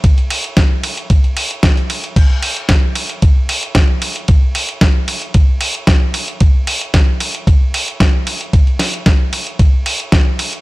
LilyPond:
\new DrumStaff \with { instrumentName = "Drums" } \drummode { \time 4/4 \tempo 4 = 113 <hh bd cymr>16 hh16 <hho cymr>16 hh16 <hh bd cymr sn>8 <hho cymr>16 hh16 <hh bd cymr>16 hh16 <hho cymr>16 hh16 <hh bd cymr sn>16 hh16 <hho cymr>16 hh16 | <cymc hh bd cymr>8 <hho cymr>16 hh16 <hh bd cymr sn>8 <hho cymr>16 hh16 <hh bd cymr>8 <hho cymr>16 hh16 <hh bd cymr sn>8 <hho cymr>16 hh16 | <hh bd cymr>8 <hho cymr>16 hh16 <hh bd cymr sn>8 <hho cymr>16 hh16 <hh bd cymr>8 <hho cymr>16 hh16 <hh bd cymr sn>8 <hho cymr>16 hh16 | <hh bd cymr>8 <hho cymr>16 hh16 <hh bd cymr sn>8 <hho cymr>16 hh16 <hh bd cymr>8 <hho cymr>16 hh16 <hh bd cymr sn>8 <hho cymr>16 hh16 |
<hh bd cymr>16 hh16 <hho cymr sn>16 hh16 <hh bd cymr sn>8 <hho cymr>16 hh16 <hh bd cymr>8 <hho cymr>16 hh16 <hh bd cymr sn>8 <hho cymr>16 hh16 | }